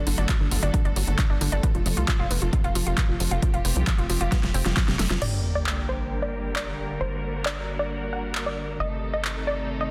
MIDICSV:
0, 0, Header, 1, 7, 480
1, 0, Start_track
1, 0, Tempo, 447761
1, 1753, Time_signature, 4, 2, 24, 8
1, 10621, End_track
2, 0, Start_track
2, 0, Title_t, "Synth pluck"
2, 0, Program_c, 0, 84
2, 5593, Note_on_c, 0, 74, 92
2, 5871, Note_off_c, 0, 74, 0
2, 5953, Note_on_c, 0, 74, 88
2, 6231, Note_off_c, 0, 74, 0
2, 6313, Note_on_c, 0, 72, 94
2, 6591, Note_off_c, 0, 72, 0
2, 6672, Note_on_c, 0, 74, 81
2, 6951, Note_off_c, 0, 74, 0
2, 7032, Note_on_c, 0, 74, 89
2, 7404, Note_off_c, 0, 74, 0
2, 7512, Note_on_c, 0, 72, 90
2, 7884, Note_off_c, 0, 72, 0
2, 7994, Note_on_c, 0, 74, 86
2, 8272, Note_off_c, 0, 74, 0
2, 8354, Note_on_c, 0, 74, 88
2, 8632, Note_off_c, 0, 74, 0
2, 8713, Note_on_c, 0, 78, 82
2, 8992, Note_off_c, 0, 78, 0
2, 9072, Note_on_c, 0, 74, 86
2, 9351, Note_off_c, 0, 74, 0
2, 9435, Note_on_c, 0, 75, 94
2, 9712, Note_off_c, 0, 75, 0
2, 9793, Note_on_c, 0, 75, 85
2, 10071, Note_off_c, 0, 75, 0
2, 10154, Note_on_c, 0, 74, 95
2, 10432, Note_off_c, 0, 74, 0
2, 10513, Note_on_c, 0, 75, 86
2, 10621, Note_off_c, 0, 75, 0
2, 10621, End_track
3, 0, Start_track
3, 0, Title_t, "String section"
3, 0, Program_c, 1, 48
3, 0, Note_on_c, 1, 50, 83
3, 0, Note_on_c, 1, 54, 75
3, 0, Note_on_c, 1, 57, 73
3, 0, Note_on_c, 1, 66, 73
3, 0, Note_on_c, 1, 69, 87
3, 1714, Note_off_c, 1, 50, 0
3, 1715, Note_off_c, 1, 54, 0
3, 1715, Note_off_c, 1, 66, 0
3, 1753, Note_on_c, 1, 48, 83
3, 1753, Note_on_c, 1, 65, 72
3, 1754, Note_on_c, 1, 53, 78
3, 3630, Note_off_c, 1, 69, 0
3, 3672, Note_on_c, 1, 67, 91
3, 5550, Note_off_c, 1, 57, 0
3, 5554, Note_off_c, 1, 48, 0
3, 5555, Note_off_c, 1, 53, 0
3, 5555, Note_off_c, 1, 65, 0
3, 5573, Note_off_c, 1, 67, 0
3, 5590, Note_on_c, 1, 50, 74
3, 5591, Note_on_c, 1, 55, 68
3, 5591, Note_on_c, 1, 58, 68
3, 5591, Note_on_c, 1, 67, 69
3, 5591, Note_on_c, 1, 70, 86
3, 7493, Note_off_c, 1, 67, 0
3, 7511, Note_on_c, 1, 66, 68
3, 9393, Note_off_c, 1, 50, 0
3, 9393, Note_off_c, 1, 55, 0
3, 9393, Note_off_c, 1, 70, 0
3, 9394, Note_off_c, 1, 58, 0
3, 9412, Note_off_c, 1, 66, 0
3, 9431, Note_on_c, 1, 48, 79
3, 9432, Note_on_c, 1, 51, 70
3, 9432, Note_on_c, 1, 57, 71
3, 9432, Note_on_c, 1, 63, 70
3, 9432, Note_on_c, 1, 69, 82
3, 10621, Note_off_c, 1, 48, 0
3, 10621, Note_off_c, 1, 51, 0
3, 10621, Note_off_c, 1, 57, 0
3, 10621, Note_off_c, 1, 63, 0
3, 10621, Note_off_c, 1, 69, 0
3, 10621, End_track
4, 0, Start_track
4, 0, Title_t, "Synth arpeggio sound"
4, 0, Program_c, 2, 84
4, 71, Note_on_c, 2, 50, 95
4, 154, Note_off_c, 2, 50, 0
4, 192, Note_on_c, 2, 62, 102
4, 274, Note_off_c, 2, 62, 0
4, 311, Note_on_c, 2, 54, 83
4, 361, Note_off_c, 2, 54, 0
4, 431, Note_on_c, 2, 50, 79
4, 514, Note_off_c, 2, 50, 0
4, 551, Note_on_c, 2, 38, 105
4, 634, Note_off_c, 2, 38, 0
4, 671, Note_on_c, 2, 62, 107
4, 754, Note_off_c, 2, 62, 0
4, 790, Note_on_c, 2, 50, 106
4, 873, Note_off_c, 2, 50, 0
4, 911, Note_on_c, 2, 62, 100
4, 994, Note_off_c, 2, 62, 0
4, 1032, Note_on_c, 2, 54, 71
4, 1081, Note_off_c, 2, 54, 0
4, 1151, Note_on_c, 2, 50, 72
4, 1234, Note_off_c, 2, 50, 0
4, 1272, Note_on_c, 2, 38, 102
4, 1354, Note_off_c, 2, 38, 0
4, 1392, Note_on_c, 2, 62, 101
4, 1474, Note_off_c, 2, 62, 0
4, 1511, Note_on_c, 2, 50, 101
4, 1594, Note_off_c, 2, 50, 0
4, 1631, Note_on_c, 2, 62, 106
4, 1714, Note_off_c, 2, 62, 0
4, 1751, Note_on_c, 2, 59, 83
4, 1801, Note_off_c, 2, 59, 0
4, 1871, Note_on_c, 2, 53, 77
4, 1954, Note_off_c, 2, 53, 0
4, 1991, Note_on_c, 2, 41, 102
4, 2074, Note_off_c, 2, 41, 0
4, 2111, Note_on_c, 2, 65, 97
4, 2194, Note_off_c, 2, 65, 0
4, 2231, Note_on_c, 2, 53, 98
4, 2314, Note_off_c, 2, 53, 0
4, 2351, Note_on_c, 2, 65, 106
4, 2434, Note_off_c, 2, 65, 0
4, 2471, Note_on_c, 2, 59, 81
4, 2521, Note_off_c, 2, 59, 0
4, 2592, Note_on_c, 2, 53, 78
4, 2674, Note_off_c, 2, 53, 0
4, 2711, Note_on_c, 2, 41, 101
4, 2794, Note_off_c, 2, 41, 0
4, 2832, Note_on_c, 2, 65, 104
4, 2914, Note_off_c, 2, 65, 0
4, 2951, Note_on_c, 2, 53, 98
4, 3034, Note_off_c, 2, 53, 0
4, 3071, Note_on_c, 2, 65, 100
4, 3154, Note_off_c, 2, 65, 0
4, 3192, Note_on_c, 2, 59, 84
4, 3241, Note_off_c, 2, 59, 0
4, 3312, Note_on_c, 2, 53, 79
4, 3394, Note_off_c, 2, 53, 0
4, 3432, Note_on_c, 2, 41, 102
4, 3514, Note_off_c, 2, 41, 0
4, 3552, Note_on_c, 2, 65, 99
4, 3634, Note_off_c, 2, 65, 0
4, 3672, Note_on_c, 2, 53, 100
4, 3754, Note_off_c, 2, 53, 0
4, 3792, Note_on_c, 2, 65, 101
4, 3874, Note_off_c, 2, 65, 0
4, 3911, Note_on_c, 2, 59, 75
4, 3961, Note_off_c, 2, 59, 0
4, 4031, Note_on_c, 2, 53, 73
4, 4114, Note_off_c, 2, 53, 0
4, 4151, Note_on_c, 2, 41, 99
4, 4234, Note_off_c, 2, 41, 0
4, 4271, Note_on_c, 2, 65, 97
4, 4354, Note_off_c, 2, 65, 0
4, 4391, Note_on_c, 2, 53, 107
4, 4474, Note_off_c, 2, 53, 0
4, 4511, Note_on_c, 2, 65, 105
4, 4593, Note_off_c, 2, 65, 0
4, 4631, Note_on_c, 2, 59, 85
4, 4681, Note_off_c, 2, 59, 0
4, 4751, Note_on_c, 2, 53, 78
4, 4833, Note_off_c, 2, 53, 0
4, 4871, Note_on_c, 2, 60, 98
4, 4953, Note_off_c, 2, 60, 0
4, 4991, Note_on_c, 2, 53, 77
4, 5041, Note_off_c, 2, 53, 0
4, 5111, Note_on_c, 2, 53, 86
4, 5194, Note_off_c, 2, 53, 0
4, 5232, Note_on_c, 2, 48, 82
4, 5346, Note_off_c, 2, 48, 0
4, 5352, Note_on_c, 2, 57, 77
4, 5402, Note_off_c, 2, 57, 0
4, 5472, Note_on_c, 2, 53, 78
4, 5554, Note_off_c, 2, 53, 0
4, 10621, End_track
5, 0, Start_track
5, 0, Title_t, "Analog synth bass"
5, 0, Program_c, 3, 38
5, 74, Note_on_c, 3, 31, 98
5, 159, Note_off_c, 3, 31, 0
5, 194, Note_on_c, 3, 31, 89
5, 279, Note_off_c, 3, 31, 0
5, 433, Note_on_c, 3, 31, 84
5, 518, Note_off_c, 3, 31, 0
5, 553, Note_on_c, 3, 31, 95
5, 639, Note_off_c, 3, 31, 0
5, 673, Note_on_c, 3, 31, 92
5, 759, Note_off_c, 3, 31, 0
5, 912, Note_on_c, 3, 31, 89
5, 998, Note_off_c, 3, 31, 0
5, 1034, Note_on_c, 3, 31, 101
5, 1119, Note_off_c, 3, 31, 0
5, 1153, Note_on_c, 3, 31, 96
5, 1238, Note_off_c, 3, 31, 0
5, 1394, Note_on_c, 3, 31, 80
5, 1479, Note_off_c, 3, 31, 0
5, 1513, Note_on_c, 3, 31, 93
5, 1599, Note_off_c, 3, 31, 0
5, 1634, Note_on_c, 3, 31, 93
5, 1719, Note_off_c, 3, 31, 0
5, 1875, Note_on_c, 3, 29, 89
5, 1959, Note_off_c, 3, 29, 0
5, 1995, Note_on_c, 3, 29, 97
5, 2080, Note_off_c, 3, 29, 0
5, 2114, Note_on_c, 3, 36, 86
5, 2199, Note_off_c, 3, 36, 0
5, 2354, Note_on_c, 3, 29, 86
5, 2439, Note_off_c, 3, 29, 0
5, 2474, Note_on_c, 3, 29, 96
5, 2559, Note_off_c, 3, 29, 0
5, 2593, Note_on_c, 3, 29, 89
5, 2679, Note_off_c, 3, 29, 0
5, 2834, Note_on_c, 3, 29, 90
5, 2919, Note_off_c, 3, 29, 0
5, 2954, Note_on_c, 3, 29, 94
5, 3039, Note_off_c, 3, 29, 0
5, 3074, Note_on_c, 3, 29, 95
5, 3159, Note_off_c, 3, 29, 0
5, 3313, Note_on_c, 3, 29, 88
5, 3398, Note_off_c, 3, 29, 0
5, 3433, Note_on_c, 3, 29, 92
5, 3519, Note_off_c, 3, 29, 0
5, 3552, Note_on_c, 3, 29, 96
5, 3638, Note_off_c, 3, 29, 0
5, 3792, Note_on_c, 3, 29, 85
5, 3878, Note_off_c, 3, 29, 0
5, 3912, Note_on_c, 3, 29, 101
5, 3998, Note_off_c, 3, 29, 0
5, 4032, Note_on_c, 3, 36, 90
5, 4118, Note_off_c, 3, 36, 0
5, 4272, Note_on_c, 3, 29, 85
5, 4358, Note_off_c, 3, 29, 0
5, 4392, Note_on_c, 3, 29, 96
5, 4478, Note_off_c, 3, 29, 0
5, 4513, Note_on_c, 3, 29, 89
5, 4598, Note_off_c, 3, 29, 0
5, 4753, Note_on_c, 3, 29, 88
5, 4839, Note_off_c, 3, 29, 0
5, 4872, Note_on_c, 3, 29, 96
5, 4958, Note_off_c, 3, 29, 0
5, 4991, Note_on_c, 3, 29, 91
5, 5078, Note_off_c, 3, 29, 0
5, 5232, Note_on_c, 3, 29, 84
5, 5318, Note_off_c, 3, 29, 0
5, 5352, Note_on_c, 3, 29, 90
5, 5438, Note_off_c, 3, 29, 0
5, 5472, Note_on_c, 3, 29, 93
5, 5558, Note_off_c, 3, 29, 0
5, 5592, Note_on_c, 3, 31, 83
5, 7489, Note_off_c, 3, 31, 0
5, 7512, Note_on_c, 3, 31, 86
5, 9408, Note_off_c, 3, 31, 0
5, 9433, Note_on_c, 3, 31, 83
5, 10621, Note_off_c, 3, 31, 0
5, 10621, End_track
6, 0, Start_track
6, 0, Title_t, "Sub drop"
6, 0, Program_c, 4, 103
6, 5592, Note_on_c, 4, 60, 66
6, 7512, Note_off_c, 4, 60, 0
6, 10621, End_track
7, 0, Start_track
7, 0, Title_t, "Drums"
7, 72, Note_on_c, 9, 46, 102
7, 179, Note_off_c, 9, 46, 0
7, 192, Note_on_c, 9, 42, 49
7, 299, Note_off_c, 9, 42, 0
7, 311, Note_on_c, 9, 36, 108
7, 312, Note_on_c, 9, 39, 114
7, 312, Note_on_c, 9, 42, 80
7, 418, Note_off_c, 9, 36, 0
7, 419, Note_off_c, 9, 39, 0
7, 419, Note_off_c, 9, 42, 0
7, 552, Note_on_c, 9, 46, 94
7, 659, Note_off_c, 9, 46, 0
7, 673, Note_on_c, 9, 42, 50
7, 780, Note_off_c, 9, 42, 0
7, 791, Note_on_c, 9, 36, 108
7, 793, Note_on_c, 9, 42, 77
7, 898, Note_off_c, 9, 36, 0
7, 900, Note_off_c, 9, 42, 0
7, 913, Note_on_c, 9, 42, 34
7, 1020, Note_off_c, 9, 42, 0
7, 1032, Note_on_c, 9, 46, 103
7, 1139, Note_off_c, 9, 46, 0
7, 1152, Note_on_c, 9, 42, 49
7, 1259, Note_off_c, 9, 42, 0
7, 1271, Note_on_c, 9, 36, 113
7, 1273, Note_on_c, 9, 39, 109
7, 1273, Note_on_c, 9, 42, 78
7, 1378, Note_off_c, 9, 36, 0
7, 1380, Note_off_c, 9, 39, 0
7, 1380, Note_off_c, 9, 42, 0
7, 1513, Note_on_c, 9, 46, 98
7, 1620, Note_off_c, 9, 46, 0
7, 1633, Note_on_c, 9, 42, 50
7, 1740, Note_off_c, 9, 42, 0
7, 1751, Note_on_c, 9, 36, 108
7, 1753, Note_on_c, 9, 42, 82
7, 1858, Note_off_c, 9, 36, 0
7, 1860, Note_off_c, 9, 42, 0
7, 1873, Note_on_c, 9, 42, 38
7, 1980, Note_off_c, 9, 42, 0
7, 1992, Note_on_c, 9, 46, 102
7, 2100, Note_off_c, 9, 46, 0
7, 2113, Note_on_c, 9, 42, 53
7, 2220, Note_off_c, 9, 42, 0
7, 2231, Note_on_c, 9, 36, 107
7, 2233, Note_on_c, 9, 39, 117
7, 2233, Note_on_c, 9, 42, 81
7, 2338, Note_off_c, 9, 36, 0
7, 2340, Note_off_c, 9, 39, 0
7, 2340, Note_off_c, 9, 42, 0
7, 2473, Note_on_c, 9, 46, 94
7, 2580, Note_off_c, 9, 46, 0
7, 2593, Note_on_c, 9, 42, 56
7, 2700, Note_off_c, 9, 42, 0
7, 2711, Note_on_c, 9, 36, 108
7, 2713, Note_on_c, 9, 42, 81
7, 2819, Note_off_c, 9, 36, 0
7, 2820, Note_off_c, 9, 42, 0
7, 2832, Note_on_c, 9, 42, 37
7, 2940, Note_off_c, 9, 42, 0
7, 2952, Note_on_c, 9, 46, 99
7, 3059, Note_off_c, 9, 46, 0
7, 3073, Note_on_c, 9, 42, 54
7, 3180, Note_off_c, 9, 42, 0
7, 3191, Note_on_c, 9, 36, 110
7, 3192, Note_on_c, 9, 39, 113
7, 3192, Note_on_c, 9, 42, 74
7, 3299, Note_off_c, 9, 36, 0
7, 3299, Note_off_c, 9, 39, 0
7, 3299, Note_off_c, 9, 42, 0
7, 3432, Note_on_c, 9, 46, 96
7, 3539, Note_off_c, 9, 46, 0
7, 3552, Note_on_c, 9, 42, 54
7, 3659, Note_off_c, 9, 42, 0
7, 3671, Note_on_c, 9, 36, 109
7, 3672, Note_on_c, 9, 42, 86
7, 3778, Note_off_c, 9, 36, 0
7, 3779, Note_off_c, 9, 42, 0
7, 3792, Note_on_c, 9, 42, 38
7, 3899, Note_off_c, 9, 42, 0
7, 3912, Note_on_c, 9, 46, 98
7, 4019, Note_off_c, 9, 46, 0
7, 4031, Note_on_c, 9, 42, 55
7, 4139, Note_off_c, 9, 42, 0
7, 4151, Note_on_c, 9, 36, 113
7, 4152, Note_on_c, 9, 39, 120
7, 4152, Note_on_c, 9, 42, 80
7, 4258, Note_off_c, 9, 36, 0
7, 4259, Note_off_c, 9, 39, 0
7, 4259, Note_off_c, 9, 42, 0
7, 4272, Note_on_c, 9, 42, 39
7, 4379, Note_off_c, 9, 42, 0
7, 4391, Note_on_c, 9, 46, 100
7, 4498, Note_off_c, 9, 46, 0
7, 4512, Note_on_c, 9, 42, 59
7, 4619, Note_off_c, 9, 42, 0
7, 4631, Note_on_c, 9, 36, 108
7, 4631, Note_on_c, 9, 38, 60
7, 4631, Note_on_c, 9, 42, 81
7, 4738, Note_off_c, 9, 36, 0
7, 4738, Note_off_c, 9, 38, 0
7, 4738, Note_off_c, 9, 42, 0
7, 4752, Note_on_c, 9, 38, 54
7, 4752, Note_on_c, 9, 42, 39
7, 4859, Note_off_c, 9, 38, 0
7, 4859, Note_off_c, 9, 42, 0
7, 4871, Note_on_c, 9, 46, 98
7, 4978, Note_off_c, 9, 46, 0
7, 4991, Note_on_c, 9, 38, 68
7, 4991, Note_on_c, 9, 42, 55
7, 5098, Note_off_c, 9, 38, 0
7, 5098, Note_off_c, 9, 42, 0
7, 5111, Note_on_c, 9, 36, 114
7, 5112, Note_on_c, 9, 38, 86
7, 5112, Note_on_c, 9, 39, 117
7, 5112, Note_on_c, 9, 42, 81
7, 5218, Note_off_c, 9, 36, 0
7, 5219, Note_off_c, 9, 38, 0
7, 5219, Note_off_c, 9, 39, 0
7, 5219, Note_off_c, 9, 42, 0
7, 5232, Note_on_c, 9, 38, 75
7, 5232, Note_on_c, 9, 42, 37
7, 5340, Note_off_c, 9, 38, 0
7, 5340, Note_off_c, 9, 42, 0
7, 5353, Note_on_c, 9, 38, 100
7, 5353, Note_on_c, 9, 46, 103
7, 5460, Note_off_c, 9, 38, 0
7, 5460, Note_off_c, 9, 46, 0
7, 5473, Note_on_c, 9, 38, 84
7, 5473, Note_on_c, 9, 42, 53
7, 5580, Note_off_c, 9, 38, 0
7, 5580, Note_off_c, 9, 42, 0
7, 5593, Note_on_c, 9, 49, 78
7, 5700, Note_off_c, 9, 49, 0
7, 6072, Note_on_c, 9, 39, 120
7, 6180, Note_off_c, 9, 39, 0
7, 7032, Note_on_c, 9, 39, 110
7, 7139, Note_off_c, 9, 39, 0
7, 7992, Note_on_c, 9, 39, 113
7, 8099, Note_off_c, 9, 39, 0
7, 8952, Note_on_c, 9, 39, 112
7, 9060, Note_off_c, 9, 39, 0
7, 9913, Note_on_c, 9, 39, 109
7, 10020, Note_off_c, 9, 39, 0
7, 10621, End_track
0, 0, End_of_file